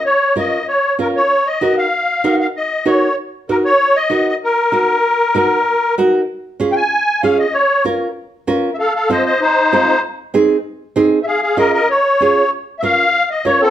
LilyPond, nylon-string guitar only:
\new Staff \with { instrumentName = "Nylon-string guitar" } { \time 4/4 \key bes \minor \tempo 4 = 192 r4 <des' f' bes'>8 r4. <des' f' bes'>8 r8 | r4 <ees' ges' bes'>8 r4. <ees' ges' bes'>8 r8 | r4 <ees' ges' bes'>8 r4. <ees' ges' bes'>8 r8 | r4 <ees' ges' bes'>8 r4. <ees' ges' bes'>8 r8 |
r4 <ees' ges' bes'>8 r4. <ees' ges' bes'>8 r8 | r4 <des' f' aes'>8 r4. <des' f' aes'>8 r8 | r4 <des' f' bes'>8 r4. <des' f' bes'>8 r8 | r4 <c' f' a'>8 r4. <c' f' a'>8 r8 |
r4 <c' ees' aes'>8 r4. <c' ees' aes'>8 r8 | r4 <des' f' aes'>8 r4. <des' f' aes'>8 r8 | r4 <des' f' bes'>8 r4. <des' f' bes'>8 r8 | }